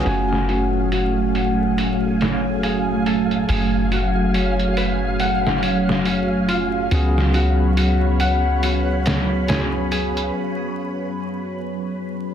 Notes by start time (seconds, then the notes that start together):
Already playing: C#4 F4
0.05 F#1 F#3 A3 C#4 F#4 F5 G#5, open hi-hat
0.33 snare
0.49 F#4, open hi-hat
0.92 F#4, open hi-hat
1.35 F#5, open hi-hat
1.78 F#4, open hi-hat
2.20 C#4, snare, open hi-hat
2.63 G#4, open hi-hat
3.06 A4, open hi-hat
3.31 closed hi-hat
3.49 F#1 G#4, open hi-hat
3.92 F#4, open hi-hat
4.34 C#4, open hi-hat
4.60 closed hi-hat
4.77 B4, open hi-hat
5.20 F#5, open hi-hat
5.47 snare
5.63 C#4, open hi-hat
5.89 snare
6.06 C#4, open hi-hat
6.48 F4, open hi-hat
6.91 C#2 B3 C#4 F#4 G#4 C#5 B5, open hi-hat
7.18 snare
7.34 F#4, open hi-hat
7.77 F#4, open hi-hat
8.20 F#5, open hi-hat
8.63 F#4, open hi-hat
9.06 C#4, snare, open hi-hat
9.48 G#4, snare, open hi-hat
9.91 G#4, open hi-hat
10.17 closed hi-hat